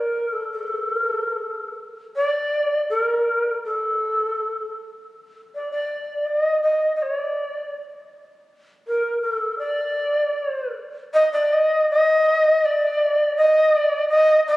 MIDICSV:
0, 0, Header, 1, 2, 480
1, 0, Start_track
1, 0, Tempo, 737101
1, 432, Time_signature, 2, 2, 24, 8
1, 2349, Tempo, 760456
1, 4749, Tempo, 744417
1, 7629, Tempo, 726392
1, 9408, End_track
2, 0, Start_track
2, 0, Title_t, "Shakuhachi"
2, 0, Program_c, 0, 77
2, 0, Note_on_c, 0, 70, 66
2, 212, Note_on_c, 0, 69, 64
2, 222, Note_off_c, 0, 70, 0
2, 322, Note_off_c, 0, 69, 0
2, 338, Note_on_c, 0, 69, 61
2, 1137, Note_off_c, 0, 69, 0
2, 1404, Note_on_c, 0, 74, 82
2, 1847, Note_off_c, 0, 74, 0
2, 1886, Note_on_c, 0, 70, 65
2, 2333, Note_off_c, 0, 70, 0
2, 2374, Note_on_c, 0, 69, 60
2, 3057, Note_off_c, 0, 69, 0
2, 3574, Note_on_c, 0, 74, 59
2, 3674, Note_off_c, 0, 74, 0
2, 3678, Note_on_c, 0, 74, 61
2, 4028, Note_on_c, 0, 75, 68
2, 4037, Note_off_c, 0, 74, 0
2, 4249, Note_off_c, 0, 75, 0
2, 4252, Note_on_c, 0, 75, 68
2, 4442, Note_off_c, 0, 75, 0
2, 4462, Note_on_c, 0, 75, 48
2, 4503, Note_on_c, 0, 73, 60
2, 4513, Note_off_c, 0, 75, 0
2, 4598, Note_off_c, 0, 73, 0
2, 4598, Note_on_c, 0, 74, 60
2, 4982, Note_off_c, 0, 74, 0
2, 5692, Note_on_c, 0, 70, 68
2, 5909, Note_off_c, 0, 70, 0
2, 5913, Note_on_c, 0, 69, 64
2, 6145, Note_off_c, 0, 69, 0
2, 6151, Note_on_c, 0, 74, 76
2, 6865, Note_off_c, 0, 74, 0
2, 7155, Note_on_c, 0, 75, 103
2, 7264, Note_off_c, 0, 75, 0
2, 7274, Note_on_c, 0, 74, 87
2, 7406, Note_on_c, 0, 75, 89
2, 7416, Note_off_c, 0, 74, 0
2, 7637, Note_off_c, 0, 75, 0
2, 7648, Note_on_c, 0, 75, 102
2, 8141, Note_on_c, 0, 74, 97
2, 8151, Note_off_c, 0, 75, 0
2, 8608, Note_off_c, 0, 74, 0
2, 8614, Note_on_c, 0, 75, 98
2, 8875, Note_on_c, 0, 74, 90
2, 8885, Note_off_c, 0, 75, 0
2, 9084, Note_off_c, 0, 74, 0
2, 9088, Note_on_c, 0, 75, 109
2, 9301, Note_off_c, 0, 75, 0
2, 9346, Note_on_c, 0, 75, 97
2, 9408, Note_off_c, 0, 75, 0
2, 9408, End_track
0, 0, End_of_file